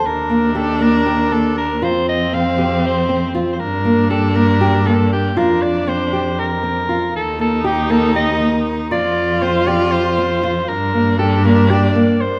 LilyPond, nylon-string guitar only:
\new Staff \with { instrumentName = "Nylon-string guitar" } { \time 7/8 \key ees \lydian \tempo 4 = 118 r8 bes8 g'8 bes8 g'8 bes4 | f'4 c'8 g'4 c'8 f'8 | r8 bes8 g'8 bes8 g'8 bes4 | f'4 c'8 g'4 c'8 f'8 |
r8 bes8 g'8 bes8 g'8 bes4 | f'4 c'8 g'4 c'8 f'8 | r8 bes8 g'8 bes8 g'8 bes4 | }